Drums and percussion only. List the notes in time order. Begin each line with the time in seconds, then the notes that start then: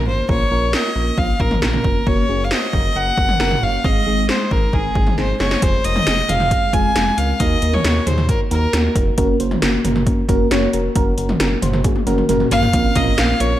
0.29 kick
0.73 snare
1.18 kick
1.40 kick
1.51 mid tom
1.62 snare
1.73 mid tom
1.84 kick
2.07 kick
2.51 snare
2.73 kick
3.17 kick
3.29 mid tom
3.40 snare
3.51 mid tom
3.84 kick
4.29 snare
4.51 kick
4.73 kick
4.95 kick
5.07 mid tom
5.18 snare
5.40 snare
5.51 snare
5.62 kick, closed hi-hat
5.84 closed hi-hat
5.96 mid tom
6.07 snare, closed hi-hat
6.29 closed hi-hat, mid tom
6.40 mid tom
6.51 kick, closed hi-hat
6.73 kick, closed hi-hat
6.96 snare, closed hi-hat
7.18 closed hi-hat
7.40 kick, closed hi-hat
7.62 closed hi-hat
7.73 mid tom
7.84 snare, closed hi-hat
8.07 closed hi-hat, mid tom
8.18 mid tom
8.29 kick, closed hi-hat
8.51 closed hi-hat
8.73 snare, closed hi-hat
8.95 kick, closed hi-hat
9.18 kick, closed hi-hat
9.40 closed hi-hat
9.51 mid tom
9.62 snare, closed hi-hat
9.84 closed hi-hat, mid tom
9.96 mid tom
10.07 kick, closed hi-hat
10.29 kick, closed hi-hat
10.51 snare, closed hi-hat
10.73 closed hi-hat
10.95 kick, closed hi-hat
11.18 closed hi-hat
11.29 mid tom
11.40 snare, closed hi-hat
11.62 closed hi-hat, mid tom
11.73 mid tom
11.84 kick, closed hi-hat, high tom
11.96 high tom
12.07 closed hi-hat, mid tom
12.18 mid tom
12.29 closed hi-hat, mid tom
12.40 mid tom
12.51 closed hi-hat, floor tom
12.62 floor tom
12.73 kick, closed hi-hat
12.95 kick, closed hi-hat, mid tom
13.18 snare, closed hi-hat
13.40 closed hi-hat